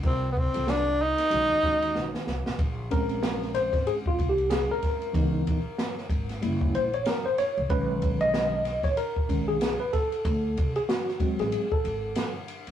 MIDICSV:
0, 0, Header, 1, 6, 480
1, 0, Start_track
1, 0, Tempo, 638298
1, 30, Time_signature, 4, 2, 24, 8
1, 9558, End_track
2, 0, Start_track
2, 0, Title_t, "Tine electric piano"
2, 0, Program_c, 0, 4
2, 20, Note_on_c, 0, 55, 73
2, 22, Note_on_c, 0, 60, 63
2, 25, Note_on_c, 0, 65, 60
2, 31, Note_on_c, 0, 70, 81
2, 251, Note_off_c, 0, 55, 0
2, 251, Note_off_c, 0, 60, 0
2, 253, Note_off_c, 0, 65, 0
2, 256, Note_off_c, 0, 70, 0
2, 402, Note_on_c, 0, 55, 69
2, 407, Note_on_c, 0, 60, 65
2, 408, Note_on_c, 0, 65, 65
2, 412, Note_on_c, 0, 69, 75
2, 919, Note_off_c, 0, 55, 0
2, 921, Note_off_c, 0, 60, 0
2, 922, Note_off_c, 0, 65, 0
2, 924, Note_off_c, 0, 69, 0
2, 978, Note_on_c, 0, 51, 70
2, 981, Note_on_c, 0, 56, 66
2, 984, Note_on_c, 0, 61, 64
2, 988, Note_on_c, 0, 66, 80
2, 1185, Note_off_c, 0, 51, 0
2, 1187, Note_off_c, 0, 56, 0
2, 1188, Note_off_c, 0, 61, 0
2, 1190, Note_off_c, 0, 66, 0
2, 1224, Note_on_c, 0, 51, 66
2, 1227, Note_on_c, 0, 56, 63
2, 1230, Note_on_c, 0, 61, 65
2, 1235, Note_on_c, 0, 66, 78
2, 1678, Note_off_c, 0, 51, 0
2, 1680, Note_off_c, 0, 56, 0
2, 1681, Note_off_c, 0, 61, 0
2, 1684, Note_off_c, 0, 66, 0
2, 2187, Note_on_c, 0, 61, 51
2, 2191, Note_on_c, 0, 56, 44
2, 2193, Note_on_c, 0, 70, 90
2, 2196, Note_on_c, 0, 60, 55
2, 2667, Note_on_c, 0, 72, 103
2, 2686, Note_off_c, 0, 70, 0
2, 2910, Note_on_c, 0, 68, 89
2, 2916, Note_off_c, 0, 72, 0
2, 2982, Note_off_c, 0, 68, 0
2, 3064, Note_on_c, 0, 65, 84
2, 3227, Note_on_c, 0, 67, 78
2, 3232, Note_off_c, 0, 65, 0
2, 3387, Note_on_c, 0, 68, 91
2, 3393, Note_off_c, 0, 67, 0
2, 3545, Note_on_c, 0, 70, 88
2, 3553, Note_off_c, 0, 68, 0
2, 3838, Note_off_c, 0, 61, 0
2, 3841, Note_off_c, 0, 56, 0
2, 3843, Note_off_c, 0, 60, 0
2, 3860, Note_on_c, 0, 52, 58
2, 3866, Note_on_c, 0, 59, 51
2, 3871, Note_on_c, 0, 63, 61
2, 4201, Note_off_c, 0, 52, 0
2, 4204, Note_off_c, 0, 59, 0
2, 4207, Note_off_c, 0, 63, 0
2, 4717, Note_off_c, 0, 70, 0
2, 4823, Note_on_c, 0, 55, 52
2, 4826, Note_on_c, 0, 58, 46
2, 4831, Note_on_c, 0, 64, 56
2, 5076, Note_on_c, 0, 72, 91
2, 5163, Note_off_c, 0, 55, 0
2, 5164, Note_off_c, 0, 58, 0
2, 5167, Note_off_c, 0, 64, 0
2, 5220, Note_off_c, 0, 72, 0
2, 5220, Note_on_c, 0, 73, 94
2, 5307, Note_off_c, 0, 73, 0
2, 5315, Note_on_c, 0, 70, 88
2, 5455, Note_on_c, 0, 72, 90
2, 5459, Note_off_c, 0, 70, 0
2, 5544, Note_off_c, 0, 72, 0
2, 5553, Note_on_c, 0, 73, 101
2, 5784, Note_on_c, 0, 51, 57
2, 5789, Note_on_c, 0, 56, 53
2, 5791, Note_on_c, 0, 71, 100
2, 5793, Note_on_c, 0, 61, 60
2, 5799, Note_off_c, 0, 73, 0
2, 6172, Note_on_c, 0, 75, 108
2, 6185, Note_off_c, 0, 71, 0
2, 6477, Note_off_c, 0, 51, 0
2, 6479, Note_off_c, 0, 56, 0
2, 6481, Note_off_c, 0, 61, 0
2, 6649, Note_on_c, 0, 73, 95
2, 6667, Note_off_c, 0, 75, 0
2, 6748, Note_on_c, 0, 70, 89
2, 6751, Note_off_c, 0, 73, 0
2, 6984, Note_on_c, 0, 51, 51
2, 6986, Note_on_c, 0, 56, 47
2, 6991, Note_on_c, 0, 61, 53
2, 7105, Note_off_c, 0, 70, 0
2, 7129, Note_on_c, 0, 68, 86
2, 7203, Note_off_c, 0, 51, 0
2, 7204, Note_off_c, 0, 56, 0
2, 7206, Note_off_c, 0, 61, 0
2, 7354, Note_off_c, 0, 68, 0
2, 7370, Note_on_c, 0, 71, 82
2, 7468, Note_on_c, 0, 69, 94
2, 7471, Note_off_c, 0, 71, 0
2, 8061, Note_off_c, 0, 69, 0
2, 8092, Note_on_c, 0, 68, 89
2, 8136, Note_off_c, 0, 68, 0
2, 8189, Note_on_c, 0, 66, 82
2, 8424, Note_on_c, 0, 54, 58
2, 8428, Note_on_c, 0, 56, 48
2, 8431, Note_on_c, 0, 60, 58
2, 8573, Note_on_c, 0, 68, 82
2, 8583, Note_off_c, 0, 66, 0
2, 8763, Note_off_c, 0, 54, 0
2, 8765, Note_off_c, 0, 56, 0
2, 8767, Note_off_c, 0, 60, 0
2, 8812, Note_on_c, 0, 69, 79
2, 8820, Note_off_c, 0, 68, 0
2, 9262, Note_off_c, 0, 69, 0
2, 9558, End_track
3, 0, Start_track
3, 0, Title_t, "Tenor saxophone"
3, 0, Program_c, 1, 66
3, 44, Note_on_c, 1, 60, 87
3, 221, Note_off_c, 1, 60, 0
3, 238, Note_on_c, 1, 59, 67
3, 285, Note_on_c, 1, 60, 94
3, 297, Note_off_c, 1, 59, 0
3, 523, Note_on_c, 1, 62, 97
3, 535, Note_off_c, 1, 60, 0
3, 763, Note_on_c, 1, 63, 109
3, 774, Note_off_c, 1, 62, 0
3, 1716, Note_off_c, 1, 63, 0
3, 9558, End_track
4, 0, Start_track
4, 0, Title_t, "Upright bass"
4, 0, Program_c, 2, 32
4, 28, Note_on_c, 2, 36, 97
4, 365, Note_off_c, 2, 36, 0
4, 412, Note_on_c, 2, 36, 84
4, 834, Note_off_c, 2, 36, 0
4, 991, Note_on_c, 2, 35, 93
4, 1116, Note_off_c, 2, 35, 0
4, 1228, Note_on_c, 2, 39, 90
4, 1440, Note_off_c, 2, 39, 0
4, 1468, Note_on_c, 2, 35, 76
4, 1594, Note_off_c, 2, 35, 0
4, 1710, Note_on_c, 2, 36, 70
4, 1835, Note_off_c, 2, 36, 0
4, 1851, Note_on_c, 2, 35, 81
4, 1937, Note_off_c, 2, 35, 0
4, 1947, Note_on_c, 2, 34, 98
4, 2781, Note_off_c, 2, 34, 0
4, 2805, Note_on_c, 2, 32, 89
4, 2894, Note_off_c, 2, 32, 0
4, 3151, Note_on_c, 2, 36, 87
4, 3486, Note_off_c, 2, 36, 0
4, 3870, Note_on_c, 2, 37, 104
4, 4081, Note_off_c, 2, 37, 0
4, 4121, Note_on_c, 2, 35, 90
4, 4241, Note_off_c, 2, 35, 0
4, 4583, Note_on_c, 2, 32, 90
4, 4797, Note_off_c, 2, 32, 0
4, 4834, Note_on_c, 2, 30, 82
4, 5043, Note_off_c, 2, 30, 0
4, 5071, Note_on_c, 2, 34, 84
4, 5282, Note_off_c, 2, 34, 0
4, 5696, Note_on_c, 2, 36, 93
4, 5780, Note_off_c, 2, 36, 0
4, 5790, Note_on_c, 2, 35, 109
4, 6622, Note_off_c, 2, 35, 0
4, 6643, Note_on_c, 2, 34, 92
4, 6733, Note_off_c, 2, 34, 0
4, 6989, Note_on_c, 2, 35, 83
4, 7325, Note_off_c, 2, 35, 0
4, 7708, Note_on_c, 2, 38, 113
4, 7920, Note_off_c, 2, 38, 0
4, 7957, Note_on_c, 2, 36, 90
4, 8079, Note_off_c, 2, 36, 0
4, 8570, Note_on_c, 2, 33, 85
4, 8657, Note_off_c, 2, 33, 0
4, 8907, Note_on_c, 2, 32, 86
4, 9119, Note_off_c, 2, 32, 0
4, 9533, Note_on_c, 2, 38, 82
4, 9558, Note_off_c, 2, 38, 0
4, 9558, End_track
5, 0, Start_track
5, 0, Title_t, "Muted upright bass strokes"
5, 1133, Note_on_c, 9, 29, 46
5, 1208, Note_off_c, 9, 29, 0
5, 9558, End_track
6, 0, Start_track
6, 0, Title_t, "Drums"
6, 25, Note_on_c, 9, 51, 53
6, 26, Note_on_c, 9, 36, 104
6, 100, Note_off_c, 9, 51, 0
6, 102, Note_off_c, 9, 36, 0
6, 277, Note_on_c, 9, 36, 89
6, 352, Note_off_c, 9, 36, 0
6, 407, Note_on_c, 9, 51, 56
6, 482, Note_off_c, 9, 51, 0
6, 507, Note_on_c, 9, 38, 104
6, 511, Note_on_c, 9, 44, 44
6, 511, Note_on_c, 9, 51, 59
6, 582, Note_off_c, 9, 38, 0
6, 586, Note_off_c, 9, 44, 0
6, 586, Note_off_c, 9, 51, 0
6, 889, Note_on_c, 9, 51, 62
6, 895, Note_on_c, 9, 38, 33
6, 964, Note_off_c, 9, 51, 0
6, 971, Note_off_c, 9, 38, 0
6, 986, Note_on_c, 9, 51, 67
6, 1061, Note_off_c, 9, 51, 0
6, 1227, Note_on_c, 9, 36, 78
6, 1302, Note_off_c, 9, 36, 0
6, 1371, Note_on_c, 9, 51, 49
6, 1446, Note_off_c, 9, 51, 0
6, 1469, Note_on_c, 9, 38, 58
6, 1544, Note_off_c, 9, 38, 0
6, 1612, Note_on_c, 9, 38, 57
6, 1687, Note_off_c, 9, 38, 0
6, 1707, Note_on_c, 9, 38, 73
6, 1782, Note_off_c, 9, 38, 0
6, 1851, Note_on_c, 9, 38, 91
6, 1926, Note_off_c, 9, 38, 0
6, 1946, Note_on_c, 9, 36, 100
6, 1946, Note_on_c, 9, 51, 57
6, 2021, Note_off_c, 9, 36, 0
6, 2021, Note_off_c, 9, 51, 0
6, 2189, Note_on_c, 9, 51, 57
6, 2196, Note_on_c, 9, 36, 92
6, 2264, Note_off_c, 9, 51, 0
6, 2272, Note_off_c, 9, 36, 0
6, 2326, Note_on_c, 9, 51, 41
6, 2401, Note_off_c, 9, 51, 0
6, 2426, Note_on_c, 9, 38, 111
6, 2430, Note_on_c, 9, 44, 43
6, 2430, Note_on_c, 9, 51, 64
6, 2502, Note_off_c, 9, 38, 0
6, 2505, Note_off_c, 9, 44, 0
6, 2505, Note_off_c, 9, 51, 0
6, 2573, Note_on_c, 9, 38, 35
6, 2648, Note_off_c, 9, 38, 0
6, 2666, Note_on_c, 9, 51, 58
6, 2669, Note_on_c, 9, 38, 32
6, 2741, Note_off_c, 9, 51, 0
6, 2745, Note_off_c, 9, 38, 0
6, 2803, Note_on_c, 9, 36, 88
6, 2809, Note_on_c, 9, 51, 40
6, 2816, Note_on_c, 9, 38, 30
6, 2878, Note_off_c, 9, 36, 0
6, 2884, Note_off_c, 9, 51, 0
6, 2891, Note_off_c, 9, 38, 0
6, 2908, Note_on_c, 9, 51, 64
6, 2983, Note_off_c, 9, 51, 0
6, 3052, Note_on_c, 9, 36, 89
6, 3127, Note_off_c, 9, 36, 0
6, 3148, Note_on_c, 9, 36, 92
6, 3154, Note_on_c, 9, 51, 53
6, 3224, Note_off_c, 9, 36, 0
6, 3229, Note_off_c, 9, 51, 0
6, 3294, Note_on_c, 9, 51, 36
6, 3369, Note_off_c, 9, 51, 0
6, 3387, Note_on_c, 9, 44, 58
6, 3387, Note_on_c, 9, 51, 77
6, 3394, Note_on_c, 9, 38, 119
6, 3462, Note_off_c, 9, 44, 0
6, 3462, Note_off_c, 9, 51, 0
6, 3469, Note_off_c, 9, 38, 0
6, 3628, Note_on_c, 9, 51, 53
6, 3632, Note_on_c, 9, 36, 84
6, 3632, Note_on_c, 9, 38, 31
6, 3703, Note_off_c, 9, 51, 0
6, 3707, Note_off_c, 9, 36, 0
6, 3707, Note_off_c, 9, 38, 0
6, 3772, Note_on_c, 9, 51, 42
6, 3847, Note_off_c, 9, 51, 0
6, 3868, Note_on_c, 9, 36, 106
6, 3872, Note_on_c, 9, 51, 57
6, 3943, Note_off_c, 9, 36, 0
6, 3947, Note_off_c, 9, 51, 0
6, 4114, Note_on_c, 9, 51, 59
6, 4119, Note_on_c, 9, 36, 89
6, 4189, Note_off_c, 9, 51, 0
6, 4194, Note_off_c, 9, 36, 0
6, 4350, Note_on_c, 9, 38, 103
6, 4354, Note_on_c, 9, 44, 46
6, 4354, Note_on_c, 9, 51, 62
6, 4425, Note_off_c, 9, 38, 0
6, 4429, Note_off_c, 9, 44, 0
6, 4429, Note_off_c, 9, 51, 0
6, 4495, Note_on_c, 9, 38, 33
6, 4570, Note_off_c, 9, 38, 0
6, 4584, Note_on_c, 9, 36, 94
6, 4589, Note_on_c, 9, 51, 57
6, 4659, Note_off_c, 9, 36, 0
6, 4664, Note_off_c, 9, 51, 0
6, 4731, Note_on_c, 9, 51, 47
6, 4738, Note_on_c, 9, 38, 34
6, 4806, Note_off_c, 9, 51, 0
6, 4813, Note_off_c, 9, 38, 0
6, 4831, Note_on_c, 9, 51, 63
6, 4906, Note_off_c, 9, 51, 0
6, 4973, Note_on_c, 9, 36, 88
6, 5048, Note_off_c, 9, 36, 0
6, 5073, Note_on_c, 9, 51, 53
6, 5149, Note_off_c, 9, 51, 0
6, 5214, Note_on_c, 9, 51, 38
6, 5289, Note_off_c, 9, 51, 0
6, 5305, Note_on_c, 9, 44, 52
6, 5305, Note_on_c, 9, 51, 75
6, 5312, Note_on_c, 9, 38, 119
6, 5380, Note_off_c, 9, 44, 0
6, 5380, Note_off_c, 9, 51, 0
6, 5387, Note_off_c, 9, 38, 0
6, 5550, Note_on_c, 9, 51, 56
6, 5553, Note_on_c, 9, 38, 33
6, 5625, Note_off_c, 9, 51, 0
6, 5629, Note_off_c, 9, 38, 0
6, 5788, Note_on_c, 9, 36, 99
6, 5789, Note_on_c, 9, 51, 57
6, 5863, Note_off_c, 9, 36, 0
6, 5864, Note_off_c, 9, 51, 0
6, 6029, Note_on_c, 9, 51, 59
6, 6038, Note_on_c, 9, 36, 96
6, 6104, Note_off_c, 9, 51, 0
6, 6113, Note_off_c, 9, 36, 0
6, 6170, Note_on_c, 9, 51, 41
6, 6245, Note_off_c, 9, 51, 0
6, 6269, Note_on_c, 9, 38, 105
6, 6273, Note_on_c, 9, 44, 49
6, 6273, Note_on_c, 9, 51, 67
6, 6344, Note_off_c, 9, 38, 0
6, 6348, Note_off_c, 9, 44, 0
6, 6348, Note_off_c, 9, 51, 0
6, 6505, Note_on_c, 9, 51, 55
6, 6509, Note_on_c, 9, 38, 33
6, 6580, Note_off_c, 9, 51, 0
6, 6584, Note_off_c, 9, 38, 0
6, 6643, Note_on_c, 9, 36, 88
6, 6647, Note_on_c, 9, 51, 46
6, 6654, Note_on_c, 9, 38, 32
6, 6718, Note_off_c, 9, 36, 0
6, 6723, Note_off_c, 9, 51, 0
6, 6729, Note_off_c, 9, 38, 0
6, 6745, Note_on_c, 9, 51, 63
6, 6820, Note_off_c, 9, 51, 0
6, 6891, Note_on_c, 9, 36, 90
6, 6967, Note_off_c, 9, 36, 0
6, 6988, Note_on_c, 9, 36, 91
6, 6990, Note_on_c, 9, 51, 58
6, 7063, Note_off_c, 9, 36, 0
6, 7065, Note_off_c, 9, 51, 0
6, 7226, Note_on_c, 9, 44, 59
6, 7226, Note_on_c, 9, 51, 79
6, 7233, Note_on_c, 9, 38, 124
6, 7301, Note_off_c, 9, 44, 0
6, 7301, Note_off_c, 9, 51, 0
6, 7308, Note_off_c, 9, 38, 0
6, 7469, Note_on_c, 9, 51, 51
6, 7472, Note_on_c, 9, 36, 85
6, 7472, Note_on_c, 9, 38, 32
6, 7544, Note_off_c, 9, 51, 0
6, 7547, Note_off_c, 9, 36, 0
6, 7548, Note_off_c, 9, 38, 0
6, 7611, Note_on_c, 9, 51, 42
6, 7686, Note_off_c, 9, 51, 0
6, 7707, Note_on_c, 9, 36, 103
6, 7708, Note_on_c, 9, 51, 59
6, 7782, Note_off_c, 9, 36, 0
6, 7783, Note_off_c, 9, 51, 0
6, 7951, Note_on_c, 9, 51, 57
6, 7958, Note_on_c, 9, 36, 93
6, 8027, Note_off_c, 9, 51, 0
6, 8033, Note_off_c, 9, 36, 0
6, 8088, Note_on_c, 9, 51, 43
6, 8163, Note_off_c, 9, 51, 0
6, 8188, Note_on_c, 9, 38, 103
6, 8191, Note_on_c, 9, 44, 46
6, 8191, Note_on_c, 9, 51, 65
6, 8263, Note_off_c, 9, 38, 0
6, 8267, Note_off_c, 9, 44, 0
6, 8267, Note_off_c, 9, 51, 0
6, 8332, Note_on_c, 9, 38, 37
6, 8407, Note_off_c, 9, 38, 0
6, 8421, Note_on_c, 9, 36, 92
6, 8423, Note_on_c, 9, 51, 60
6, 8496, Note_off_c, 9, 36, 0
6, 8498, Note_off_c, 9, 51, 0
6, 8566, Note_on_c, 9, 51, 42
6, 8573, Note_on_c, 9, 38, 32
6, 8641, Note_off_c, 9, 51, 0
6, 8648, Note_off_c, 9, 38, 0
6, 8664, Note_on_c, 9, 51, 67
6, 8739, Note_off_c, 9, 51, 0
6, 8811, Note_on_c, 9, 36, 95
6, 8886, Note_off_c, 9, 36, 0
6, 8909, Note_on_c, 9, 51, 54
6, 8984, Note_off_c, 9, 51, 0
6, 9140, Note_on_c, 9, 44, 55
6, 9140, Note_on_c, 9, 51, 83
6, 9147, Note_on_c, 9, 38, 123
6, 9216, Note_off_c, 9, 44, 0
6, 9216, Note_off_c, 9, 51, 0
6, 9223, Note_off_c, 9, 38, 0
6, 9385, Note_on_c, 9, 51, 59
6, 9460, Note_off_c, 9, 51, 0
6, 9527, Note_on_c, 9, 51, 44
6, 9558, Note_off_c, 9, 51, 0
6, 9558, End_track
0, 0, End_of_file